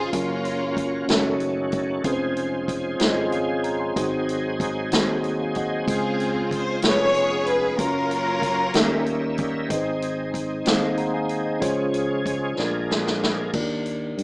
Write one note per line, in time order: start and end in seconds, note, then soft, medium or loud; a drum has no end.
0.00 0.15 C#3 medium
0.00 3.92 C#3 soft
0.00 0.11 G#3 soft
0.00 0.15 G#3 medium
0.00 0.13 C#4 medium
0.00 0.10 F4 medium
0.00 0.13 F4 medium
0.00 1.07 F4 medium
0.00 0.12 G#4 medium
0.00 0.14 G#4 loud
0.00 0.15 G#4 medium
0.00 0.12 C5 soft
0.00 0.15 C5 medium
0.00 0.14 D#5 medium
0.00 0.15 F5 medium
0.13 1.05 F#1 medium
0.13 2.03 F#3 soft
0.13 1.00 F#3 medium
0.13 1.08 A#3 medium
0.13 1.06 A#3 medium
0.13 0.99 C#4 medium
0.13 2.03 C#4 medium
0.13 1.06 C#4 medium
0.13 0.99 F4 medium
0.13 1.09 F4 medium
0.13 1.00 A#4 medium
0.13 1.01 C#5 medium
0.13 kick medium
0.13 closed hi-hat medium
0.45 closed hi-hat soft
0.77 kick medium
0.77 closed hi-hat medium
1.07 2.00 F#1 medium
1.07 2.04 D#3 medium
1.07 2.04 A3 medium
1.07 1.94 C#4 medium
1.07 1.95 D#4 medium
1.07 1.95 F#4 medium
1.07 1.16 G#4 medium
1.07 1.96 C#5 medium
1.07 snare loud
1.07 closed hi-hat medium
1.16 1.99 A4 medium
1.40 closed hi-hat soft
1.72 kick medium
1.72 closed hi-hat soft
2.03 2.96 F1 medium
2.03 3.94 F3 medium
2.03 3.94 G#3 medium
2.03 2.90 C4 medium
2.03 2.90 C#4 medium
2.03 2.91 F4 medium
2.03 7.75 G#4 medium
2.03 2.91 G#4 medium
2.03 2.12 B4 medium
2.03 6.79 C5 soft
2.03 kick medium
2.03 closed hi-hat medium
2.13 2.95 C5 medium
2.37 closed hi-hat soft
2.68 kick medium
2.68 closed hi-hat medium
2.99 3.92 G#1 medium
2.99 3.86 C4 medium
2.99 3.87 C#4 medium
2.99 3.87 F4 medium
2.99 3.87 G#4 medium
2.99 3.08 C#5 medium
2.99 snare loud
2.99 closed hi-hat medium
3.08 3.36 D#5 medium
3.32 3.48 C#5 medium
3.32 3.47 F5 medium
3.32 closed hi-hat soft
3.48 3.63 F5 medium
3.48 3.63 G#5 medium
3.64 3.79 A#5 medium
3.64 closed hi-hat soft
3.79 4.10 G#5 medium
3.79 4.10 C6 medium
3.95 4.93 G#1 medium
3.95 4.88 G#2 medium
3.95 5.86 F#3 medium
3.95 6.81 G#3 soft
3.95 4.82 C4 medium
3.95 4.82 D#4 medium
3.95 5.86 D#4 medium
3.95 4.83 F#4 medium
3.95 4.83 G#4 medium
3.95 4.83 C5 medium
3.95 kick loud
3.95 closed hi-hat medium
4.29 closed hi-hat soft
4.60 kick medium
4.60 closed hi-hat medium
4.92 5.83 D#2 medium
4.92 5.78 C4 medium
4.92 5.78 D#4 medium
4.92 5.79 F#4 medium
4.92 5.79 G#4 medium
4.92 5.25 C5 medium
4.92 snare loud
4.92 closed hi-hat medium
5.24 closed hi-hat soft
5.40 5.55 F5 soft
5.40 5.55 G#5 medium
5.55 5.70 D#5 medium
5.55 5.71 F#5 medium
5.55 kick medium
5.55 closed hi-hat soft
5.71 5.87 C5 soft
5.71 6.02 D#5 medium
5.86 6.79 C#2 medium
5.86 6.79 C#3 medium
5.86 6.83 C#3 medium
5.86 6.73 G#3 medium
5.86 6.73 C4 medium
5.86 6.74 F4 medium
5.86 8.73 F4 medium
5.86 6.74 G#4 medium
5.86 6.74 C5 medium
5.86 kick medium
5.86 closed hi-hat medium
5.90 6.80 C4 medium
5.90 6.80 F4 medium
5.90 6.49 G#4 medium
6.20 closed hi-hat soft
6.51 6.82 C5 medium
6.51 kick medium
6.51 closed hi-hat medium
6.81 7.74 F1 medium
6.81 7.78 G#3 medium
6.81 7.69 B3 medium
6.81 7.78 B3 medium
6.81 7.69 C#4 medium
6.81 7.78 C#4 medium
6.81 7.69 F4 medium
6.81 7.70 G#4 medium
6.81 6.90 A#4 medium
6.81 snare loud
6.81 closed hi-hat medium
6.86 7.76 G#4 medium
6.86 7.48 C#5 loud
6.91 7.73 B4 medium
7.15 closed hi-hat soft
7.47 7.80 B4 medium
7.47 closed hi-hat soft
7.77 8.71 F#1 medium
7.77 8.66 F#3 medium
7.77 8.74 F#3 soft
7.77 8.64 A#3 medium
7.77 9.69 A#3 medium
7.77 8.65 C#4 medium
7.77 9.69 C#4 medium
7.77 9.35 C#4 medium
7.77 8.65 F4 medium
7.77 9.35 F4 medium
7.77 8.74 A#4 medium
7.77 8.66 A#4 medium
7.77 9.39 A#4 loud
7.77 kick loud
7.77 closed hi-hat medium
8.11 closed hi-hat soft
8.42 kick medium
8.42 closed hi-hat medium
8.73 9.66 D#2 medium
8.73 9.69 D#3 medium
8.73 9.66 D#3 medium
8.73 9.69 G3 medium
8.73 9.61 C#4 medium
8.73 9.61 D#4 medium
8.73 9.62 G4 medium
8.73 9.62 A#4 medium
8.73 9.69 E5 medium
8.73 9.61 E5 medium
8.73 snare loud
8.73 closed hi-hat medium
9.06 closed hi-hat soft
9.38 kick medium
9.38 closed hi-hat soft
9.68 10.62 G#1 loud
9.68 10.62 G#2 medium
9.68 12.55 G#3 medium
9.68 10.56 C4 medium
9.68 11.60 C4 medium
9.68 10.57 D#4 medium
9.68 11.60 D#4 medium
9.68 10.57 G#4 medium
9.68 9.77 B4 medium
9.68 10.57 D#5 loud
9.68 kick loud
9.68 closed hi-hat medium
9.77 10.60 C5 medium
10.02 closed hi-hat medium
10.34 kick medium
10.34 closed hi-hat medium
10.65 11.58 D#2 medium
10.65 11.52 C4 medium
10.65 11.53 D#4 medium
10.65 11.53 G#4 medium
10.65 10.99 C5 medium
10.65 10.99 F5 medium
10.65 snare loud
10.65 closed hi-hat medium
10.98 11.14 F#5 medium
10.98 11.13 A#5 medium
10.98 closed hi-hat soft
11.14 11.45 F5 medium
11.14 11.44 G#5 medium
11.29 closed hi-hat soft
11.45 11.61 C5 medium
11.45 11.76 D#5 medium
11.60 12.54 C#2 loud
11.60 12.53 C#3 medium
11.60 13.51 F3 medium
11.60 12.47 C#4 medium
11.60 12.56 C#4 medium
11.60 12.48 F4 medium
11.60 13.51 G#4 medium
11.60 12.48 G#4 medium
11.60 12.49 C5 medium
11.60 12.49 C#5 loud
11.60 kick loud
11.60 closed hi-hat medium
11.94 closed hi-hat soft
12.26 kick medium
12.26 closed hi-hat medium
12.56 13.50 A#1 medium
12.56 13.50 A#2 medium
12.56 13.53 G#3 medium
12.56 13.53 A#3 medium
12.56 13.44 D4 medium
12.56 13.53 D4 medium
12.56 13.44 F4 medium
12.56 13.44 G#4 medium
12.56 13.45 A#4 medium
12.56 13.45 D5 medium
12.56 snare soft
12.91 snare medium
13.07 snare medium
13.23 snare medium
13.53 14.14 D#2 medium
13.53 14.23 D#3 medium
13.53 14.23 D4 medium
13.53 14.23 D#4 medium
13.53 13.61 F4 medium
13.53 14.23 A#4 medium
13.53 14.23 D5 medium
13.53 kick medium
13.53 crash medium
13.60 14.23 G4 medium
13.86 closed hi-hat soft
14.18 14.23 G2 medium
14.18 closed hi-hat medium